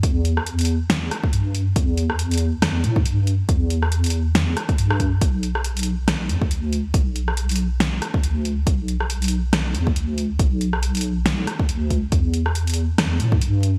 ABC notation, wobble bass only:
X:1
M:4/4
L:1/8
Q:"Swing 16ths" 1/4=139
K:Bm
V:1 name="Wobble bass" clef=bass
E,,4- E,, z G,,2 | E,,4- E,, A,, G,,2 | E,,4- E,, z G,,2 | B,,,4- B,,, E,, D,,2 |
B,,,4- B,,, z D,,2 | B,,,4- B,,, E,, D,,2 | B,,,4- B,,, z D,,2 | E,,4- E,, A,, G,,2 |]